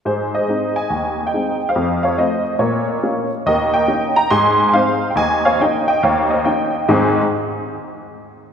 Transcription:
0.05 G#2 G#4 C5
0.34 C5 D#5
0.48 G#3 C4 D#4
0.76 D#5 G#5
0.90 D#2
1.27 D#5 G5
1.34 G#3 C4 D#4
1.69 C5 F5
1.76 F2
2.03 C#5 F5
2.18 A3 C4 F4 C5 D#5
2.55 A#2 C#5 D#5
2.60 A#4
3.03 A#3 C#4 F4
3.46 D#2 A#4 D#5
3.74 D#5 G5
3.88 A#3 C#4 D#4
4.16 G5 A#5
4.31 G#2 G#5 C6
4.69 G#5
4.73 G#3 C4 D#4 C5 F5
5.10 G5
5.15 D#2 D#5 G#5
5.45 C#5 F5
5.61 A#3 C#4 D#4 D#5 G5
5.88 D#5 G5
6.03 D#2 C#5 F5
6.30 C5 D#5
6.45 A#3 C#4 D#4 D#5 G5
6.89 G#2 D#3 C4 D#4 G#4 C5 G#5

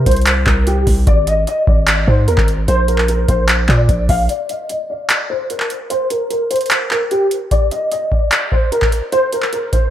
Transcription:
0.06 C2 C5, kick, closed hi-hat
0.11 closed hi-hat
0.16 closed hi-hat
0.21 closed hi-hat
0.26 clap, closed hi-hat
0.47 C2 A#4, kick, clap
0.67 G4, closed hi-hat
0.87 C2, kick, open hi-hat
1.07 G#1 D5, kick, closed hi-hat
1.27 D#5, closed hi-hat
1.47 D#5, closed hi-hat
1.67 G#1 D5, kick
1.88 clap, closed hi-hat
2.08 G#2 C5, kick
2.28 D#2 A#4, closed hi-hat
2.38 G#1, kick, clap
2.48 closed hi-hat
2.68 A#1 C5, closed hi-hat
2.88 A#4, closed hi-hat
2.98 clap
3.08 A#4, closed hi-hat
3.28 A#1 C5, kick, closed hi-hat
3.49 clap, closed hi-hat
3.69 A#2 D5, kick, clap
3.89 A#1, kick, closed hi-hat
4.09 A#1 F5, kick, open hi-hat
4.29 D5, closed hi-hat
4.49 D#5, closed hi-hat
4.69 D#5, closed hi-hat
4.90 D5
5.10 clap, closed hi-hat
5.30 C5
5.50 A#4, closed hi-hat
5.60 clap
5.70 closed hi-hat
5.90 C5, closed hi-hat
6.10 A#4, closed hi-hat
6.30 A#4, closed hi-hat
6.51 C5, closed hi-hat
6.56 closed hi-hat
6.61 closed hi-hat
6.66 closed hi-hat
6.71 clap, closed hi-hat
6.91 A#4, clap
7.11 G4, closed hi-hat
7.31 closed hi-hat
7.51 D5, kick, closed hi-hat
7.71 D#5, closed hi-hat
7.92 D#5, closed hi-hat
8.12 D5, kick
8.32 clap, closed hi-hat
8.52 C5, kick
8.72 A#4, closed hi-hat
8.82 kick, clap
8.92 closed hi-hat
9.12 C5, closed hi-hat
9.32 A#4, closed hi-hat
9.42 clap
9.53 A#4, closed hi-hat
9.73 C5, kick, closed hi-hat

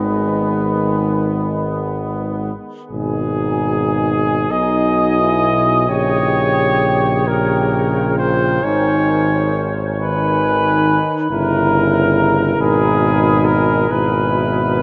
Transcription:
Already playing: G#1 D#3 G#3 B3 B4
2.89 G#1 B2 D#4 G#4 G#5
4.50 B1 B2 D#4 D#5 G#5
5.19 E4
5.88 A#1 C#3 G4 C#5 G5
7.27 C#3 G4 A#4 G5
7.95 F4
8.18 C5
8.62 G#1 D#3 D#4 C#5 G#5
9.98 D#3 D#4 B4 G#5
11.30 G1 C#3 E4 A#4 A#5
12.58 G#1 B2 D#4 G#4 B5
13.45 A#4
13.89 G#1 B2 E4 B4 B5

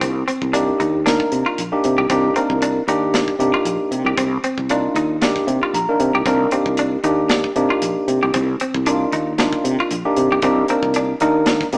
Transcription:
Already playing: A#3 D4 D#4 F4
0.01 C2 C4, kick, closed hi-hat
0.28 C4, muted fretless electric bass stroke, closed hi-hat
0.42 C2, kick
0.53 A#3 D4 D#4 G4, closed hi-hat
0.80 D#2 D#4, closed hi-hat
1.06 A#3 D4 D#4 A#4, snare, closed hi-hat
1.20 kick
1.32 C3, closed hi-hat
1.46 F4, muted fretless electric bass stroke
1.58 A#1, closed hi-hat
1.72 A#3 D4 D#4 G4, muted fretless electric bass stroke
1.84 C3, closed hi-hat
1.98 C2 G4
2.10 C2 A#3 C4 D4 D#4 G4, kick, closed hi-hat
2.36 A#3 C4 D4 D#4 A#4, muted fretless electric bass stroke, closed hi-hat
2.50 C2, kick
2.62 D4, closed hi-hat
2.88 D#2 A#3 D4 D#4 G4, closed hi-hat
3.14 D4, snare, closed hi-hat
3.28 kick
3.39 C3 A#3 D4 D#4 G4, closed hi-hat
3.53 F4, muted fretless electric bass stroke
3.65 A#1, closed hi-hat
3.91 C3, closed hi-hat
4.05 C2 G4
4.18 C2 C4, kick, closed hi-hat
4.43 C4, muted fretless electric bass stroke, closed hi-hat
4.58 C2, kick
4.69 A#3 D4 D#4 F4, closed hi-hat
4.95 D#2 D#4, closed hi-hat
5.21 A#3 D4 D#4 G4, snare, closed hi-hat
5.36 kick, snare
5.47 C3, closed hi-hat
5.62 F4, muted fretless electric bass stroke
5.74 A#1 A#5, closed hi-hat
5.88 A#3 D4 D#4 A#4, muted fretless electric bass stroke
6.00 C3, closed hi-hat
6.14 C2 G4
6.25 C2 A#3 C4 D4 D#4 A#4, kick, closed hi-hat
6.51 A#3 C4 D4 D#4 G4, muted fretless electric bass stroke, closed hi-hat
6.66 C2, kick
6.77 D4, closed hi-hat
7.04 D#2 A#3 D4 D#4 G4, closed hi-hat
7.29 D4, snare, closed hi-hat
7.44 kick
7.56 C3 A#3 D4 D#4 G4, closed hi-hat
7.70 F4, muted fretless electric bass stroke
7.82 A#1, closed hi-hat
7.96 muted fretless electric bass stroke
8.08 C3, closed hi-hat
8.23 C2 G4
8.34 C2 C4, kick, closed hi-hat
8.60 C4, muted fretless electric bass stroke, closed hi-hat
8.74 C2, kick
8.86 A#3 D4 D#4 F4, closed hi-hat
9.12 D#2 D#4, closed hi-hat
9.38 A#3 D4 D#4 F4, snare, closed hi-hat
9.53 kick
9.64 C3, closed hi-hat
9.79 F4, muted fretless electric bass stroke
9.91 A#1, closed hi-hat
10.05 A#3 D4 D#4 G4, muted fretless electric bass stroke
10.16 C3, closed hi-hat
10.31 C2 G4
10.42 C2 A#3 C4 D4 D#4 G4, kick, closed hi-hat
10.68 A#3 C4 D4 D#4 A#4, muted fretless electric bass stroke, closed hi-hat
10.83 C2, kick
10.94 D4, closed hi-hat
11.20 D#2 A#3 D4 D#4 A#4, closed hi-hat
11.46 D4, snare, closed hi-hat
11.60 kick, snare
11.73 C3 A#3 D4 D#4 G4, closed hi-hat

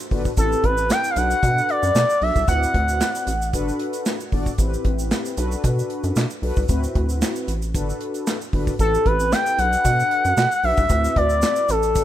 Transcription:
0.11 G1 D4 F#4 A4 B4, kick, open hi-hat
0.25 kick, shaker
0.37 A1 C4 E4 G4 A4 B4, kick, closed hi-hat, shaker
0.52 shaker
0.64 A1 B4, kick, closed hi-hat
0.78 shaker
0.90 G5, snare, clap, closed hi-hat, shaker
1.04 shaker
1.10 F5
1.16 B1 D4 F#4 A4 B4 F#5, closed hi-hat, shaker
1.31 shaker
1.43 B2, kick, closed hi-hat, shaker
1.58 shaker
1.69 D5, closed hi-hat
1.83 F#2, shaker
1.95 B2, snare, clap, closed hi-hat, shaker
2.10 shaker
2.21 B1 D4 F#4 A4 D5 E5, open hi-hat
2.36 C2, kick, shaker
2.48 D2 C4 E4 F#4 B4 F#5, kick, closed hi-hat, shaker
2.63 shaker
2.74 D2, kick, closed hi-hat
2.89 shaker
3.00 snare, clap, closed hi-hat, shaker
3.15 shaker
3.27 A1, closed hi-hat, shaker
3.42 shaker
3.53 G1 D4 F#4 A4 B4, kick, closed hi-hat, shaker
3.68 shaker
3.79 closed hi-hat
3.93 closed hi-hat, shaker
4.06 snare, clap, closed hi-hat, shaker
4.20 shaker
4.32 G1 D4 F#4 A4 D5, kick, open hi-hat
4.46 kick, shaker
4.58 A1 C4 E4 G4 B4, kick, closed hi-hat, shaker
4.74 shaker
4.85 A1, kick, closed hi-hat
4.99 shaker
5.11 snare, clap, closed hi-hat, shaker
5.25 shaker
5.37 B1 D4 F#4 A4 B4, closed hi-hat, shaker
5.52 shaker
5.64 B2, kick, closed hi-hat, shaker
5.79 shaker
5.90 closed hi-hat
6.04 F#2, closed hi-hat, shaker
6.16 B2, snare, clap, closed hi-hat, shaker
6.30 shaker
6.42 B1 D4 F#4 A4 B4, open hi-hat
6.56 C2, kick, shaker
6.69 D2 C4 E4 F#4 B4, kick, closed hi-hat, shaker
6.84 shaker
6.95 D2, kick, closed hi-hat
7.09 shaker
7.22 snare, clap, closed hi-hat, shaker
7.36 shaker
7.48 A1, closed hi-hat, shaker
7.62 closed hi-hat, shaker
7.74 G1 D4 F#4 A4 B4, kick, closed hi-hat, shaker
7.90 shaker
8.01 closed hi-hat
8.14 closed hi-hat, shaker
8.27 snare, clap, closed hi-hat, shaker
8.41 shaker
8.53 G1 D4 F#4 A4 B4, kick, open hi-hat
8.67 kick, shaker
8.79 A1 C4 E4 G4 A4 B4, kick, closed hi-hat, shaker
8.95 shaker
9.06 A1 B4, kick, closed hi-hat
9.20 shaker
9.32 G5, snare, clap, closed hi-hat, shaker
9.46 shaker
9.59 B1 D4 F#4 A4 B4 F#5, closed hi-hat, shaker
9.73 closed hi-hat, shaker
9.85 B2, kick, closed hi-hat, shaker
10.00 shaker
10.11 closed hi-hat
10.25 F#2, closed hi-hat, shaker
10.37 B2, snare, clap, closed hi-hat, shaker
10.51 shaker
10.63 B1 D4 F#4 A4 B4 E5, open hi-hat
10.77 C2, kick, shaker
10.89 D2 C4 E4 F#4 A4, kick, closed hi-hat, shaker
10.97 B4
11.04 shaker
11.16 D2 D5, kick, closed hi-hat
11.29 shaker
11.42 snare, clap, closed hi-hat, shaker
11.56 shaker
11.69 A1 A4, closed hi-hat, shaker
11.83 closed hi-hat, shaker
11.95 G1 B3 D4 F#4 A4, kick, closed hi-hat, shaker

